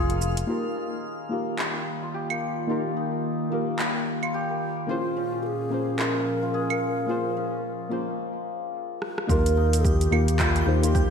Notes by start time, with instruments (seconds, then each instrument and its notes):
Already playing: analog synth bass F1, santur G#3 C#4 F4 G#4, bansuri F4, synth texture F5
0.10 santur A#3, closed hi-hat, shaker
0.21 shaker
0.37 closed hi-hat, shaker
0.47 ambient pad D#3, synth stab A#3 D#4 F4 G4 A#4, santur F4
0.76 santur D#4
1.02 ambient pad A#3
1.29 synth stab A#3 D#4 F4 G4 A#4, santur A#3, ambient pad F4
1.59 santur G3, clap
1.69 ambient pad F5
2.03 santur F4
2.14 santur G4
2.30 santur A#3, claves
2.67 synth stab A#3 D#4 F4 G4 A#4, santur F4
2.97 santur D#4
3.50 synth stab A#3 D#4 F4 G4, santur A#3
3.54 synth stab A#4
3.79 santur G3, clap
4.23 santur F4, claves
4.34 santur G4
4.50 santur A#3
4.87 ambient pad A#2, synth stab A#3 C#4 F4 G#4 C5, santur F4, bansuri F4
5.17 santur C#4
5.23 ambient pad C#4
5.43 bansuri G#4 A#4
5.64 ambient pad F3
5.70 synth stab A#3 C#4 F4 G#4, santur A#3
5.74 synth stab C5
5.98 santur G#3, bansuri A#4, clap
6.43 santur F4
6.54 santur G#4
6.70 santur A#3, claves
7.07 synth stab A#3 C#4 F4 G#4, santur F4
7.11 synth stab C5
7.37 santur C#4
7.89 synth stab A#3 C#4 F4 G#4 C5, santur A#3
9.02 cross-stick
9.18 cross-stick
9.27 analog synth bass D#2, ambient pad D#3, synth stab A#3 D#4 F4 G4 A#4, santur F4, bansuri A#4, synth texture G6, kick, shaker
9.46 closed hi-hat, shaker
9.57 santur D#4
9.70 ambient pad F4, closed hi-hat
9.74 ambient pad A#3, shaker
9.85 bansuri G4, kick, shaker
10.01 closed hi-hat, shaker
10.11 analog synth bass D#2, synth stab A#3 D#4 F4 G4 A#4, santur A#3, claves
10.28 closed hi-hat, shaker
10.39 santur G3, bansuri F4, kick, clap, shaker
10.56 closed hi-hat, shaker
10.66 analog synth bass D#2, synth stab A#3 D#4 F4 G4 C5, bansuri G#4
10.71 bansuri G4
10.82 synth stab A#3 D#4 F4 G4, santur F4, closed hi-hat, shaker
10.86 synth stab A#4
10.94 santur G4, kick, shaker